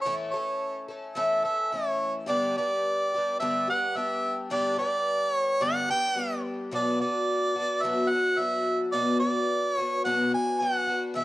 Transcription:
0.02 twelve-string acoustic guitar A2 E3, harmonica C#5
0.06 twelve-string acoustic guitar A3 C#4 A4
0.31 twelve-string acoustic guitar A4, harmonica C#5
0.36 twelve-string acoustic guitar A3 C#4
0.88 twelve-string acoustic guitar A3 C#4 A4
1.15 twelve-string acoustic guitar A2 E3 A3 C#4 A4, harmonica E5
1.42 twelve-string acoustic guitar C#4 A4, harmonica E5
1.47 twelve-string acoustic guitar A3
1.72 twelve-string acoustic guitar E3 A3 C#4 A4, harmonica C#5
2.26 twelve-string acoustic guitar G2 D3 G3 B3 D4 G4, harmonica D5
2.56 twelve-string acoustic guitar G3 B3 D4 G4, harmonica D5
3.14 twelve-string acoustic guitar G3 B3 D4 G4
3.40 twelve-string acoustic guitar G2 D3 G3 B3 D4 G4, harmonica E5
3.68 twelve-string acoustic guitar G3 B3 D4 G4, harmonica F#5
3.95 twelve-string acoustic guitar G3 B3 D4 G4, harmonica E5
4.50 twelve-string acoustic guitar G2 D3 G3 B3 D4 G4, harmonica D5
4.78 twelve-string acoustic guitar G3 B3 D4 G4, harmonica D5
5.33 harmonica C#5
5.61 twelve-string acoustic guitar G2 D3 G3 B3 D4 G4, harmonica F#5
5.88 twelve-string acoustic guitar G3 B3 D4 G4, harmonica G5
6.15 twelve-string acoustic guitar G3 B3 D4 G4
6.71 twelve-string acoustic guitar B2 F#3 B3 D4 F#4, harmonica D5
7.00 twelve-string acoustic guitar B3 D4 F#4, harmonica D5
7.56 twelve-string acoustic guitar D4 F#4
7.60 twelve-string acoustic guitar B3
7.83 twelve-string acoustic guitar B2 F#3 B3 D4 F#4, harmonica E5
8.11 twelve-string acoustic guitar D4 F#4, harmonica F#5
8.15 twelve-string acoustic guitar B3
8.37 twelve-string acoustic guitar F#3 B3 D4, harmonica E5
8.42 twelve-string acoustic guitar F#4
8.92 twelve-string acoustic guitar B2 F#3 B3 D4 F#4, harmonica D5
9.20 twelve-string acoustic guitar D4 F#4, harmonica D5
9.24 twelve-string acoustic guitar B3
9.75 twelve-string acoustic guitar F#4, harmonica C#5
9.79 twelve-string acoustic guitar B3 D4
10.05 twelve-string acoustic guitar B2 F#3 B3 D4 F#4, harmonica F#5
10.31 twelve-string acoustic guitar B3 D4 F#4, harmonica G#5
10.60 twelve-string acoustic guitar F#3 B3 D4 F#4, harmonica F#5
10.87 twelve-string acoustic guitar B3 D4 F#4
11.14 twelve-string acoustic guitar B2 E3 G#3 B3 E4, harmonica E5

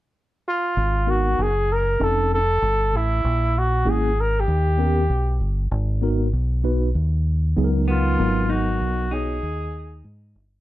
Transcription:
0.48 trumpet F4
0.77 fingered electric bass G#1
1.07 tine electric piano B3 D#4 F#4 A#4, trumpet F#4
1.39 fingered electric bass F#1, trumpet G#4
1.72 trumpet A#4
2.00 fingered electric bass F1, tine electric piano C4 C#4 D#4 A4
2.04 trumpet A4
2.34 trumpet A4
2.62 fingered electric bass G1
2.93 fingered electric bass A1, trumpet E4
3.24 fingered electric bass A#1
3.58 trumpet F#4
3.85 fingered electric bass G#1, tine electric piano A#3 C#4 E4 G#4
3.90 trumpet G#4
4.21 trumpet A#4
4.40 trumpet G4
4.48 fingered electric bass D#2
4.78 tine electric piano B3 C#4 G4 A#4
5.10 fingered electric bass B1
5.40 fingered electric bass G1
5.71 fingered electric bass G#1
6.02 tine electric piano B3 D#4 F#4 A#4
6.33 fingered electric bass B1
6.64 tine electric piano B3 D#4 F#4 B4
6.95 fingered electric bass D#2
7.57 fingered electric bass C#2, tine electric piano F#3 B3 D#4 G#4
7.64 tine electric piano A#4
7.88 clean electric guitar B3, trumpet F4
8.19 fingered electric bass G#1, tine electric piano F#3 B3 D#4 A#4
8.50 clean electric guitar D#4, trumpet F#4
8.81 fingered electric bass B1
9.11 tine electric piano B3 D#4 F#4 C#5, clean electric guitar D#4, trumpet G#4
9.43 fingered electric bass D#2
10.04 fingered electric bass G#2
10.35 fingered electric bass G1

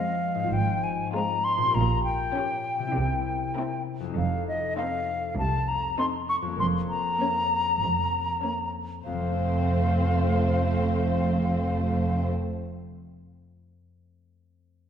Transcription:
Already playing: harp F3 G#3 F4 G#4 C5 F5, viola section G#3, violin section C4 F4, flute F5
0.35 harp G#2
0.40 harp C4
0.44 harp F4
0.49 double bass section G#1, harp C5
0.53 cello section G#2, flute G5
0.84 flute G#5
1.13 viola section G#3, violin section C4 F4, flute A#5
1.44 flute C6
1.57 harp A#2
1.62 harp C#4
1.66 harp G4
1.70 harp A#4
1.75 double bass section A#1, cello section A#2, flute A#5
2.04 flute G5
2.35 violin section C#4 G4, viola section C#4
2.79 harp C3
2.84 harp C4
2.88 harp E4
2.93 double bass section C2, cello section C3, harp A#4
3.57 viola section C4, violin section E4 A#4
4.00 harp F2
4.04 harp C4
4.09 harp D#4
4.14 double bass section F1, harp A4
4.18 cello section F2, flute F5
4.48 flute D#5
4.77 viola section C4, violin section D#4 A4, flute F5
5.38 double bass section C2, cello section C2, flute A5
5.68 flute A#5
5.99 viola section C4, violin section D#4 A4, flute C6
6.29 flute C#6
6.42 harp F2
6.47 harp A#3
6.51 harp C#4
6.56 harp A#4, flute C6
6.60 double bass section F1, cello section F2
6.89 flute A#5
7.20 viola section A#3, violin section C#4 A#4
7.82 double bass section F1, cello section F2
8.43 viola section A#3, violin section C#4 A#4
9.05 double bass section F1, cello section F2, harp F2, viola section A3, violin section C4 C5, flute F5
9.13 harp F3
9.20 harp A3
9.27 harp C4
9.34 harp C5

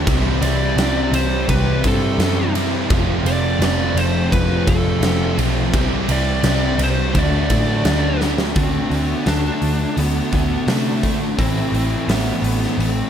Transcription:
0.07 picked electric bass C2, overdriven electric guitar C3 E3 G3 C4 E4, kick, ride
0.41 picked electric bass C2, overdriven electric guitar G3 C4 E4, lead electric guitar D5, ride
0.76 picked electric bass C2, distorted electric guitar C3, overdriven electric guitar E3 G3 C4, snare, ride
0.81 overdriven electric guitar E4
1.12 picked electric bass C2, distorted electric guitar C4, lead electric guitar C5, ride
1.16 distorted electric guitar G3
1.49 picked electric bass C2, distorted electric guitar C3 G3 C4, lead electric guitar B4, kick, ride
1.84 picked electric bass G2, overdriven electric guitar G3 C4 E4, lead electric guitar A4, kick, ride
2.18 picked electric bass F#2, distorted electric guitar C3, overdriven electric guitar E3 G3 C4, snare, ride
2.23 overdriven electric guitar E4
2.55 distorted electric guitar C3, overdriven electric guitar G3 C4 E4, ride
2.90 picked electric bass F1, distorted electric guitar F2 C3, overdriven electric guitar F3 A3 C4 F4, kick, ride
3.23 picked electric bass F1, distorted electric guitar F3, overdriven electric guitar F4, lead electric guitar D5, ride
3.27 distorted electric guitar C3, overdriven electric guitar A3 C4
3.59 picked electric bass F1, distorted electric guitar F2 C3, overdriven electric guitar F3 A3, snare, ride
3.63 overdriven electric guitar C4 F4, lead electric guitar D5
3.94 picked electric bass F1, distorted electric guitar F3, lead electric guitar C5, ride
3.99 distorted electric guitar C3
4.31 picked electric bass F1, distorted electric guitar F2 C3 F3, lead electric guitar B4, kick, ride
4.67 picked electric bass F1, distorted electric guitar C3 F3, overdriven electric guitar A3 C4 F4, lead electric guitar A4, kick, ride
5.01 picked electric bass F1, distorted electric guitar F2 C3, overdriven electric guitar F3 A3 C4 F4, snare, ride
5.37 picked electric bass B1, distorted electric guitar C3 F3, overdriven electric guitar A3 C4 F4, ride
5.41 distorted electric guitar F3
5.73 picked electric bass C2, overdriven electric guitar C3 G3 C4 E4, distorted electric guitar E3, kick, ride
5.77 distorted electric guitar G4
6.08 picked electric bass C2, overdriven electric guitar G3 C4 E4, lead electric guitar D5, ride
6.43 picked electric bass C2, overdriven electric guitar C3 G3 C4 E4, snare, ride
6.78 picked electric bass C2, distorted electric guitar C4, ride
6.83 distorted electric guitar G3, lead electric guitar C5
7.14 picked electric bass D2, overdriven electric guitar D3 F#3 A3 D4, distorted electric guitar F#4, kick, ride
7.19 lead electric guitar D5
7.50 picked electric bass A2, overdriven electric guitar F#3 A3 D4, kick, ride
7.84 picked electric bass D2, overdriven electric guitar D3 F#3 A3 D4, snare, ride
8.19 overdriven electric guitar F#3 A3 D4, snare
8.38 snare
8.54 picked electric bass D2, overdriven electric guitar D3 A3 D4 F#4, lead electric guitar C4, kick, open hi-hat
8.90 picked electric bass D2, overdriven electric guitar A3 D4 F#4, open hi-hat
9.07 lead electric guitar B3
9.26 picked electric bass D2, overdriven electric guitar D3 A3 D4 F#4, lead electric guitar D4, snare, open hi-hat
9.62 picked electric bass D2, open hi-hat
9.97 picked electric bass D2, distorted electric guitar D3 A3 D4, lead electric guitar B3, open hi-hat
10.32 picked electric bass D2, overdriven electric guitar A3 D4 F#4, kick, open hi-hat
10.67 picked electric bass C3, overdriven electric guitar D3 A3 D4 F#4, lead electric guitar A3, snare, open hi-hat
11.03 overdriven electric guitar A3 D4 F#4, kick, open hi-hat
11.37 picked electric bass A1, overdriven electric guitar A2 E3 A3 C4 E4, lead electric guitar C4, kick, open hi-hat
11.72 picked electric bass A1, overdriven electric guitar A3 C4 E4, open hi-hat
12.08 picked electric bass A1, distorted electric guitar A2, overdriven electric guitar E3 A3 C4 E4, lead electric guitar B3, snare, open hi-hat
12.42 picked electric bass A1, open hi-hat
12.63 snare
12.78 picked electric bass A1, distorted electric guitar A2 E3 A3, lead electric guitar B3, open hi-hat
12.91 lead electric guitar C4

